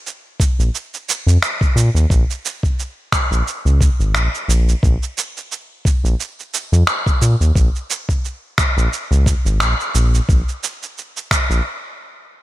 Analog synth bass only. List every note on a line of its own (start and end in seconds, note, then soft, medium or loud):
0.59 0.70 A#1 medium
1.27 1.38 F2 loud
1.76 1.90 A#2 loud
1.95 2.06 D#2 medium
2.10 2.24 A#1 medium
3.31 3.42 A#1 medium
3.65 3.89 C#2 medium
4.00 4.16 G#1 medium
4.14 4.28 A#1 medium
4.48 4.74 A#1 medium
4.83 4.97 A#1 medium
6.04 6.15 A#1 medium
6.72 6.83 F2 loud
7.22 7.35 A#2 loud
7.41 7.52 D#2 medium
7.55 7.69 A#1 medium
8.77 8.88 A#1 medium
9.11 9.34 C#2 medium
9.45 9.62 G#1 loud
9.61 9.74 A#1 medium
9.95 10.20 A#1 loud
10.29 10.42 A#1 loud
11.50 11.61 A#1 medium